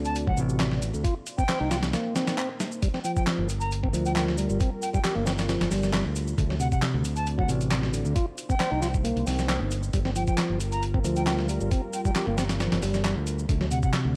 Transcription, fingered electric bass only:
Already playing: D2
0.38 A1
0.94 D2
1.61 C2
3.38 G1
3.93 D2
4.50 G1
5.16 G1
5.61 G1
5.71 G1
6.05 D2
6.38 D2
6.94 D2
7.49 A1
8.05 D2
8.72 C2
9.16 C2
9.26 C2
9.61 G1
9.94 G1
10.50 G1
11.04 D2
11.60 G1
12.27 G1
12.72 G1
12.82 G1
13.16 D2
13.49 D2
14.05 D2

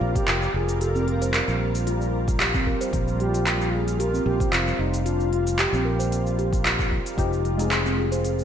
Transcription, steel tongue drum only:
0.28 F4
0.81 G4
0.95 C4
1.08 A#4
1.22 C5
1.87 F4
2.40 G4
2.54 C4
2.66 A#4
2.81 C5
3.47 F4
4.00 G4
4.14 C4
4.26 A#4
4.40 C5
5.06 F4
5.59 G4
5.73 C4
5.85 A#4
5.99 C5
6.39 G4
6.65 F4
7.18 F4
7.71 G#4
7.86 C4
7.98 G#4
8.12 C5

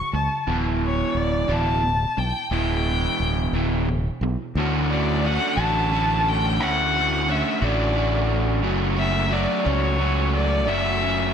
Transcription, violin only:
Already playing: C#6
0.15 A5
0.85 C#5
1.17 D5
1.52 A5
2.18 G5
2.53 G5
4.91 D5
5.26 F#5
5.61 A5
6.29 G5
6.63 F#5
7.32 E5
7.65 D5
8.98 E5
9.32 D5
9.66 C#5
10.35 D5
10.69 E5

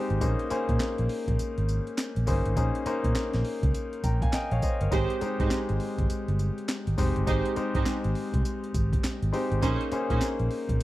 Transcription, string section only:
4.92 D#4 G4 G#4 C5
5.40 D#4 G4 G#4 C5
7.27 D#4 G4 G#4 C5
7.75 D#4 G4 G#4 C5
9.62 C#4 D#4 G#4 C5
10.10 C#4 D#4 G#4 C5

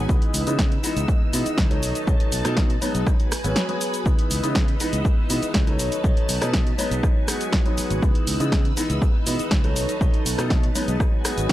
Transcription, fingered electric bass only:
0.34 C#2
0.47 C#3
0.84 muted fingered electric bass stroke
0.96 C#2
1.21 muted fingered electric bass stroke
1.33 B2
1.46 muted fingered electric bass stroke
1.58 C#2
1.83 B1
2.07 B1
2.32 B1
2.45 B2
2.82 muted fingered electric bass stroke
2.95 B1
3.44 G#1
4.06 C#2
4.30 C#2
4.43 C#3
4.80 muted fingered electric bass stroke
4.93 C#2
5.18 muted fingered electric bass stroke
5.30 B2
5.42 muted fingered electric bass stroke
5.55 C#2
5.79 B1
6.04 B1
6.29 B1
6.42 B2
6.79 muted fingered electric bass stroke
6.91 B1
7.78 muted fingered electric bass stroke
7.91 G#1
8.27 C#2
8.40 C#3
8.77 muted fingered electric bass stroke
8.90 C#2
9.15 muted fingered electric bass stroke
9.27 B2
9.40 muted fingered electric bass stroke
9.51 C#2
9.76 B1
10.01 B1
10.26 B1
10.38 B2
10.75 muted fingered electric bass stroke
10.88 B1
11.38 G#1

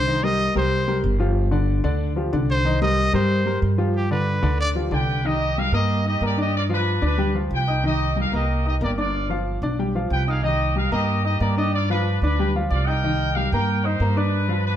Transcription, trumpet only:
Already playing: C5
0.24 D#5
0.57 C5
2.51 C5
2.82 D#5
3.15 C5
3.96 G4
4.11 B4
4.60 D5

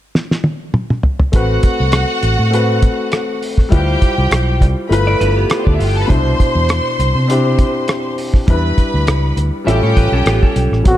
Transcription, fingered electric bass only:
1.34 A1
1.80 C2
2.23 A1
2.39 A2
3.72 D2
4.02 muted fingered electric bass stroke
4.18 C2
4.31 B1
4.61 C2
4.91 G1
5.21 G1
5.67 D2
5.80 G1
6.10 C2
6.55 E2
6.99 C2
7.15 C3
8.48 E2
8.78 muted fingered electric bass stroke
8.94 D2
9.08 C#2
9.37 D2
9.67 A1
9.83 A2
9.97 A1
10.12 B1
10.26 A1
10.56 B1
10.72 A1
10.86 A1

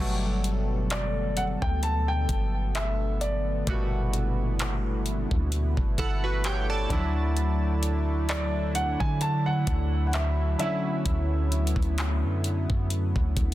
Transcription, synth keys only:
Already playing: B2
0.00 F#3 G3 A3
3.67 A#2 G3 A3 F#4
3.73 B2
5.99 E4 A4 F#5
6.24 F#4 B4
6.45 G4 C#5 G5
6.70 A4 D5 A5
6.90 D3 F3 D4 E4
6.97 F#3
10.59 D3 F#3 C#4 E4

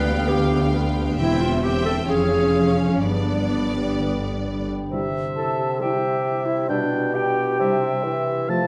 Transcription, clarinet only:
Already playing: B4
0.28 G4
1.19 E4
1.41 F4
1.64 G4
1.86 A4
2.09 G#4
2.79 C#4
3.02 D4
5.36 A4
5.80 G4
6.46 E4
6.68 D4
7.13 G4

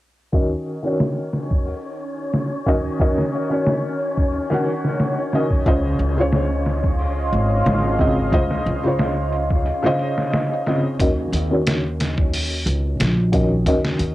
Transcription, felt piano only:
0.32 D#3 C#4 F#4 D#5
0.83 D#3 C#4 F#4 C#5
2.66 D#3 C#4 F#4 D#5
3.00 D#3 C#4 F#4 D#5
3.50 D#3 C#4 F#4 C#5
4.50 D#3 C#4 F#4 F#5
5.33 D#3 C#4 F#4 D#5
5.66 C#3 F4 C5 D#5
6.17 C#3 F4 C5
6.21 C#5
7.99 C#3 C4 F4 D#5
8.32 C#3 F4 C5 D#5
8.83 C#3 F4 C5 C#5
9.83 C#3 F4 C5 D#5
10.66 C#3 C4 F4 D#5
10.99 D#3 C#4 F#4 D#5
11.49 D#3 C#4 F#4
11.53 C#5
13.32 D#3 C#4 F#4 D#5
13.66 D#3 C#4 F#4 D#5

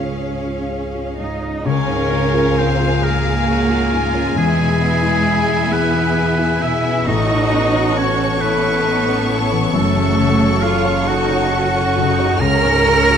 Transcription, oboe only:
1.19 D#5
1.67 C#5
2.58 C5
3.03 A#4
4.38 G#4
5.72 B4
6.62 E5
7.08 D#5
7.98 C#5
8.41 B4
9.74 A4
10.63 F5
11.08 F#5
12.41 A#5

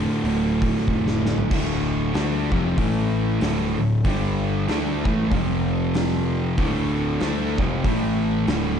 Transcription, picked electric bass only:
0.24 D1
0.87 F1
1.51 D1
2.15 D2
2.52 F1
2.78 A1
3.42 D1
3.79 D1
4.05 G1
4.69 D2
5.05 A1
5.31 F1
6.58 D1
7.21 D2
7.58 F1
7.84 A1
8.47 D1

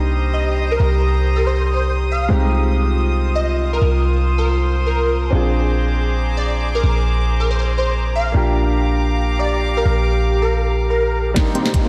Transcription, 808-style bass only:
Already playing: C2
0.79 C2
2.30 C2
3.81 C2
5.32 A#1
6.83 A#1
8.34 A#1
9.85 A#1

